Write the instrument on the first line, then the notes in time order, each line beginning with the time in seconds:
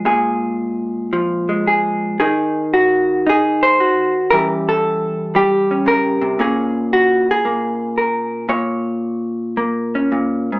hollow-body jazz guitar
Already playing: G#3
0.05 A#2 G#4
1.13 F3
1.49 G#3
1.67 G#4
2.20 D#3 D#4 G#4
2.74 F#4
3.26 D#4 G#4
3.63 C5
3.80 F#4
4.30 E3 G3 C#4 G4 A#4
4.69 A4
5.35 G3 G4
5.71 C#4
5.86 C#3 A#4
6.21 C3
6.39 A#2 A#3 C#4 G#4
6.93 F#4
7.31 G#4
7.45 A#3
7.98 A#4
8.49 A#2 C#5
9.57 A#3
9.95 C#4
10.12 A#2
10.52 G#2